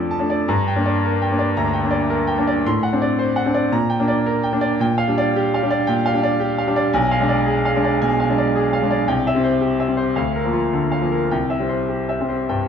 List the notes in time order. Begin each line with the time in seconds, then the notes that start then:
Already playing: F2 F3 A3 D4 A4 D5 A5
0.11 A5
0.19 A3 D4
0.30 D5
0.48 G2 A#5
0.68 G5
0.76 A#3 D4
0.86 D5
1.05 A#4
1.22 G5
1.31 A#3 D4
1.39 D5
1.57 D2 A#5
1.73 G5
1.83 A#3 D4
1.91 D5
2.10 A#4
2.27 G5
2.38 A#3 D4
2.47 D5
2.66 A2 C6
2.83 F#5
2.93 C4 D4
3.02 D5
3.19 C5
3.36 F#5
3.46 C4 D4
3.54 D5
3.72 A#2 A#5
3.90 G5
3.99 A#3 D4
4.08 D5
4.26 A#4
4.43 G5
4.53 A#3 D4
4.61 D5
4.80 A#2 G5
4.98 F5
5.08 G3 D4
5.18 D5
5.36 G4
5.54 F5
5.63 G3 D4
5.71 D5
5.87 A#2 G5
6.06 F5
6.14 G3 D4
6.23 D5
6.40 G4
6.58 F5
6.67 G3 D4
6.76 D5
6.93 B1 G#5
7.11 F5
7.20 G#3 D4
7.29 D5
7.46 G#4
7.65 F5
7.75 G#3 D4
7.84 D5
8.02 B2 G#5
8.20 F5
8.29 G#3 D4
8.38 D5
8.56 G#4
8.73 F5
8.83 G#3 D4
8.91 D5
9.08 C2 G5
9.27 E5
9.35 G3 C4
9.44 C5
9.61 G4
9.80 E5
9.88 G3 C4
9.97 C5
10.16 D2 F5
10.36 A#4
10.45 F3 A#3
10.53 F4
10.73 D3
10.92 F5
11.02 F3 A#3
11.12 A#4
11.31 C2 G5
11.50 E5
11.60 G3 C4
11.69 C5
11.89 G4
12.09 E5
12.20 G3 C4
12.29 C5
12.49 G2 G5